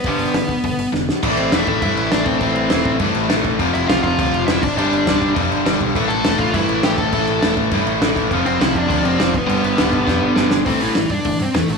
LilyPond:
<<
  \new Staff \with { instrumentName = "Lead electric guitar" } { \time 4/4 \key a \minor \tempo 4 = 203 <b b'>2. r4 | r8 <c' c''>8 <e' e''>8 <e' e''>4. <d' d''>8 <c' c''>8 | <c' c''>2 r2 | r8 <e' e''>8 <f' f''>8 <f' f''>4. <e' e''>8 <d' d''>8 |
<d' d''>2 r2 | r8 <a' a''>4 <f' f''>8 <e' e''>4 <g' g''>8 <a' a''>8~ | <a' a''>4. r2 r8 | r8 <c' c''>8 <e' e''>8 <d' d''>4 <c' c''>4 <b b'>8~ |
<b b'>2.~ <b b'>8 r8 | <c' c''>8 <e e'>4 <d' d''>4 <c' c''>8 <a a'>8 <a a'>8 | }
  \new Staff \with { instrumentName = "Overdriven electric guitar" } { \clef bass \time 4/4 \key a \minor <g, d g>4 <g, d>8 r8 <g, d>8 r8 <g, d>8 r8 | <a, e a>4 <a, e a>4 <a, e a>4 <a, e a>4 | <a, e a>4 <a, e a>4 <a, e a>4 <a, e a>4 | <f, c f>4 <f, c f>4 <f, c f>4 <f, c f>8 r8 |
<g, d g>4 <g, d g>4 <g, d g>4 <g, d g>4 | <a, e a>4 <a, e a>4 <a, e a>4 <a, e a>4 | <a, e a>4 <a, e a>4 <a, e a>4 <a, e a>4 | <f, c f>4 <f, c f>4 <f, c f>4 <f, c f>8 r8 |
<g, d g>4 <g, d g>4 <g, d g>4 <g, d g>4 | <a, e a>4 <a, e>8 r8 <a, e>8 r8 <a, e>8 r8 | }
  \new Staff \with { instrumentName = "FM bass" } { \clef bass \time 4/4 \key a \minor g,,8 g,,8 g,,8 g,,8 g,,8 g,,8 f,,4 | a,,8 a,,8 e,,8 a,,8 g,8 a,,8 a,,8 a,,8 | a,,8 a,,8 e,,8 a,,8 g,8 a,,8 a,,8 a,,8 | f,,8 f,,8 c,8 f,,8 d,8 f,,8 f,,8 g,,8 |
g,,8 g,,8 d,,8 g,,8 f,8 g,,8 g,,8 b,,8 | a,,8 a,,8 e,,8 a,,8 g,8 a,,8 a,,8 a,,8 | a,,8 a,,8 e,,8 a,,8 g,8 a,,8 a,,8 a,,8 | f,,8 f,,8 c,8 f,,8 d,8 f,,8 f,,8 g,,8 |
g,,8 g,,8 d,,8 g,,8 f,8 g,,8 g,,8 g,,8 | a,,8 a,,8 a,,8 g,8 g,,8 g,8 e,8 a,,8 | }
  \new DrumStaff \with { instrumentName = "Drums" } \drummode { \time 4/4 <hho bd>8 hho8 <hho sn>8 <hho bd>8 <hho bd>8 hho8 sn8 sn8 | <cymc bd>8 cymc8 <cymc sn>8 <cymc bd>8 <cymc bd>8 cymc8 <cymc sn>8 <cymc bd>8 | <cymc bd>8 cymc8 <cymc sn>8 <cymc bd>8 <cymc bd>8 cymc8 <cymc sn>8 <cymc bd>8 | <cymc bd>8 cymc8 <cymc sn>8 <cymc bd>8 <cymc bd>8 cymc8 <cymc sn>8 <cymc bd>8 |
cymc8 cymc8 <cymc sn>8 <cymc bd>8 <cymc bd>8 cymc8 <cymc sn>8 <cymc bd>8 | <cymc bd>8 cymc8 <cymc sn>8 <cymc bd>8 <cymc bd>8 cymc8 <cymc sn>8 <cymc bd>8 | <cymc bd>8 cymc8 <cymc sn>8 <cymc bd>8 <cymc bd>8 cymc8 <cymc sn>8 <cymc bd>8 | <cymc bd>8 cymc8 <cymc sn>8 <cymc bd>8 <cymc bd>8 cymc8 <cymc sn>8 <cymc bd>8 |
cymc8 cymc8 <cymc sn>8 <cymc bd>8 <bd sn>4 sn8 sn8 | <hho bd>8 hho8 <hho sn>8 <hho bd>8 <hho bd>8 hho8 <hho sn>8 hho8 | }
>>